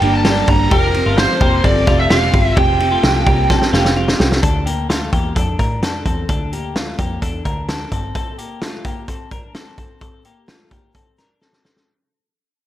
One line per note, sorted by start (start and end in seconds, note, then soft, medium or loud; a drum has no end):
0.00 0.41 G1 loud
0.00 0.24 G3 medium
0.00 0.25 A#3 soft
0.00 0.25 A#3 medium
0.00 0.25 D4 medium
0.00 0.25 G4 medium
0.00 0.24 G4 medium
0.00 0.14 G5 loud
0.00 ride medium
0.14 0.50 A5 loud
0.25 0.48 G2 medium
0.25 0.48 D3 medium
0.25 0.48 G3 medium
0.25 0.48 A#3 medium
0.25 0.69 A#3 medium
0.25 0.47 D4 medium
0.25 0.69 G4 medium
0.25 0.47 G4 medium
0.25 snare loud
0.25 ride medium
0.48 0.68 G1 loud
0.48 0.70 G3 soft
0.48 0.71 A#3 medium
0.48 0.71 D4 medium
0.48 0.71 G4 medium
0.48 0.72 A#5 loud
0.48 kick loud
0.48 ride medium
0.70 1.01 F1 loud
0.70 0.94 F3 medium
0.70 0.95 C4 medium
0.70 1.05 C4 medium
0.70 0.94 F4 medium
0.70 1.04 G4 loud
0.70 0.93 G4 medium
0.70 1.17 A#4 loud
0.70 kick loud
0.70 ride medium
0.94 1.17 C4 medium
0.94 1.17 G4 medium
0.94 ride medium
1.06 1.26 G1 medium
1.06 1.39 A3 medium
1.06 1.39 F4 medium
1.17 1.41 F3 medium
1.17 1.41 C4 medium
1.17 1.41 F4 medium
1.17 1.40 G4 medium
1.17 1.66 C5 loud
1.17 snare loud
1.17 ride medium
1.41 1.61 F1 loud
1.41 1.64 A#3 medium
1.41 1.63 C4 soft
1.41 1.63 F4 soft
1.41 1.64 G4 medium
1.41 kick medium
1.41 ride medium
1.63 1.84 G1 loud
1.63 1.87 F3 medium
1.63 1.87 C4 medium
1.63 1.88 C4 medium
1.63 1.86 F4 medium
1.63 1.85 G4 medium
1.63 1.87 A4 medium
1.63 1.99 D5 loud
1.63 kick medium
1.63 ride medium
1.87 2.07 F1 medium
1.87 2.11 A3 medium
1.87 2.10 C4 medium
1.87 2.10 F4 medium
1.87 2.09 F4 medium
1.87 2.10 G4 medium
1.87 kick loud
1.87 snare soft
1.87 ride medium
2.00 2.10 E5 loud
2.10 2.30 E1 loud
2.10 2.34 F3 medium
2.10 2.54 C4 medium
2.10 2.34 C4 medium
2.10 2.54 F4 medium
2.10 2.33 F4 medium
2.10 2.32 G4 loud
2.10 2.54 F5 medium
2.10 snare loud
2.10 ride medium
2.33 2.53 G1 medium
2.33 2.56 C4 soft
2.33 2.57 F4 medium
2.33 2.57 G4 medium
2.33 kick loud
2.33 ride medium
2.57 2.96 F1 loud
2.57 2.80 F3 medium
2.57 2.80 C4 medium
2.57 2.90 C4 medium
2.57 2.80 F4 medium
2.57 2.89 G4 loud
2.57 2.79 G4 medium
2.57 3.92 G5 loud
2.57 kick loud
2.57 ride medium
2.80 3.03 C4 soft
2.80 3.03 F4 medium
2.80 3.03 G4 medium
2.80 ride medium
2.92 3.25 A3 medium
2.92 3.24 F4 medium
3.03 3.23 C2 medium
3.03 3.27 F3 medium
3.03 3.27 C4 medium
3.03 3.27 F4 medium
3.03 3.25 G4 medium
3.03 snare loud
3.03 ride medium
3.26 3.56 C2 medium
3.26 3.50 A#3 medium
3.26 3.49 C4 medium
3.26 3.50 F4 medium
3.26 3.49 G4 medium
3.26 3.50 G4 medium
3.26 kick loud
3.26 ride medium
3.50 3.73 F3 medium
3.50 3.73 C4 medium
3.50 3.73 F4 medium
3.50 3.72 G4 medium
3.50 3.72 A4 medium
3.50 kick loud
3.50 snare medium
3.62 snare medium
3.73 4.13 F1 loud
3.73 3.97 A3 medium
3.73 3.95 C4 medium
3.73 3.95 F4 medium
3.73 3.96 G4 medium
3.73 snare medium
3.85 snare medium
3.95 4.19 F3 medium
3.95 4.19 C4 medium
3.95 4.40 C4 medium
3.95 4.18 F4 medium
3.95 4.40 F4 medium
3.95 4.17 G4 medium
4.08 snare medium
4.19 4.40 C2 medium
4.19 4.43 C4 medium
4.19 4.43 F4 medium
4.19 4.42 G4 medium
4.19 snare loud
4.32 snare medium
4.43 5.09 D2 medium
4.43 4.66 D4 medium
4.43 4.66 A4 medium
4.43 kick loud
4.43 closed hi-hat medium
4.66 4.90 A#3 medium
4.66 4.89 G4 medium
4.66 closed hi-hat medium
4.89 5.13 A3 medium
4.89 5.12 F4 medium
4.89 snare loud
4.89 closed hi-hat medium
5.13 5.32 E2 medium
5.13 5.36 A#3 medium
5.13 5.35 G4 medium
5.13 kick medium
5.13 closed hi-hat medium
5.35 5.56 F2 medium
5.35 5.59 D4 medium
5.35 5.59 A4 medium
5.35 kick medium
5.35 closed hi-hat medium
5.59 5.83 A2 medium
5.59 5.82 D4 medium
5.59 5.82 A#4 medium
5.59 kick medium
5.59 closed hi-hat medium
5.83 6.02 F2 medium
5.83 6.06 D4 medium
5.83 6.04 A4 medium
5.83 snare loud
5.83 closed hi-hat medium
6.06 6.25 E2 medium
6.06 6.29 C4 medium
6.06 6.28 A4 medium
6.06 kick medium
6.06 closed hi-hat medium
6.29 6.95 D2 medium
6.29 6.53 D4 medium
6.29 6.52 A4 medium
6.29 kick loud
6.29 closed hi-hat medium
6.53 6.76 A#3 medium
6.53 6.76 G4 medium
6.53 closed hi-hat medium
6.76 6.99 A3 medium
6.76 6.99 F4 medium
6.76 snare loud
6.76 closed hi-hat medium
6.99 7.18 F2 medium
6.99 7.22 A#3 medium
6.99 7.22 G4 medium
6.99 kick medium
6.99 closed hi-hat medium
7.22 7.42 E2 medium
7.22 7.45 D4 medium
7.22 7.45 A4 medium
7.22 kick medium
7.22 closed hi-hat medium
7.45 7.85 D2 medium
7.45 7.68 D4 medium
7.45 7.68 A#4 medium
7.45 kick medium
7.45 closed hi-hat medium
7.68 7.92 D4 medium
7.68 7.91 A4 medium
7.68 snare loud
7.68 closed hi-hat medium
7.92 8.12 G1 medium
7.92 8.15 C4 soft
7.92 8.14 A4 medium
7.92 kick medium
7.92 closed hi-hat medium
8.15 8.39 C4 medium
8.15 8.38 A4 medium
8.15 kick loud
8.15 closed hi-hat medium
8.38 8.62 A#3 soft
8.38 8.62 G4 medium
8.38 closed hi-hat medium
8.62 8.85 A3 medium
8.62 8.85 F4 medium
8.62 snare loud
8.62 closed hi-hat medium
8.85 9.08 A#3 medium
8.85 9.08 G4 medium
8.85 kick medium
8.85 closed hi-hat medium
9.08 9.32 C4 soft
9.08 9.32 A4 medium
9.08 kick medium
9.08 closed hi-hat medium
9.31 9.55 D4 medium
9.31 9.55 A#4 medium
9.31 kick medium
9.31 closed hi-hat medium
9.55 9.79 C4 medium
9.55 9.78 A4 medium
9.55 snare loud
9.55 closed hi-hat medium
9.78 10.01 C4 soft
9.78 10.00 A4 medium
9.78 kick medium
9.78 closed hi-hat medium
10.01 10.25 C4 medium
10.01 10.25 A4 medium
10.01 kick loud
10.01 closed hi-hat medium
10.25 10.49 A#3 soft
10.25 10.48 G4 medium
10.25 closed hi-hat medium
10.48 10.72 A3 medium
10.48 10.72 F4 medium
10.48 snare loud
10.48 closed hi-hat medium
10.71 10.95 A#3 medium
10.71 10.95 G4 medium
10.71 kick medium
10.71 closed hi-hat medium
10.95 11.19 C4 soft
10.95 11.18 A4 medium
10.95 kick medium
10.95 closed hi-hat medium
11.18 11.42 D4 medium
11.18 11.41 A#4 medium
11.18 snare soft
11.18 closed hi-hat medium
11.41 11.64 C4 medium
11.41 11.63 A4 medium
11.41 snare soft
11.53 snare soft
11.65 11.88 C4 soft
11.65 11.88 A4 medium
11.65 snare medium
11.76 snare medium